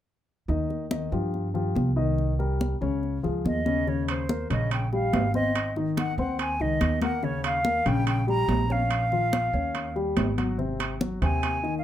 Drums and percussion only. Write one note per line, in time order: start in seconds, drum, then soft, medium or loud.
0.49 high conga soft
0.70 high conga soft
0.91 high conga medium
1.12 high conga soft
1.34 high conga soft
1.55 high conga soft
1.76 high conga medium
2.18 high conga soft
2.40 high conga soft
2.61 high conga medium
2.82 high conga soft
3.03 high conga soft
3.24 high conga soft
3.46 high conga medium
3.66 high conga medium
3.88 high conga soft
4.08 high conga soft
4.08 high timbale medium
4.29 high conga medium
4.50 high conga soft
4.50 high timbale medium
4.71 high conga soft
4.71 high timbale medium
4.93 high conga soft
5.13 high conga medium
5.13 high timbale medium
5.13 low timbale medium
5.34 high conga medium
5.55 high conga soft
5.55 high timbale medium
5.76 high conga soft
5.97 high conga medium
5.97 high timbale medium
6.18 high conga soft
6.39 high conga soft
6.39 high timbale medium
6.60 high conga soft
6.81 high conga medium
6.81 high timbale medium
7.02 high conga medium
7.02 high timbale medium
7.23 high conga soft
7.43 high conga soft
7.43 high timbale medium
7.65 high conga medium
7.86 high conga soft
7.86 high timbale medium
8.07 high conga soft
8.07 high timbale medium
8.28 high conga soft
8.49 high conga medium
8.49 high timbale medium
8.49 low timbale medium
8.70 high conga medium
8.91 high conga soft
8.91 high timbale medium
9.12 high conga soft
9.33 high conga medium
9.33 high timbale medium
9.54 high conga soft
9.75 high conga soft
9.75 high timbale medium
9.96 high conga soft
10.17 high conga medium
10.17 high timbale medium
10.17 low timbale medium
10.38 high conga medium
10.38 high timbale medium
10.59 high conga soft
10.80 high conga soft
10.80 high timbale medium
11.01 high conga medium
11.22 high conga soft
11.22 high timbale medium
11.43 high conga soft
11.43 high timbale medium
11.65 high conga soft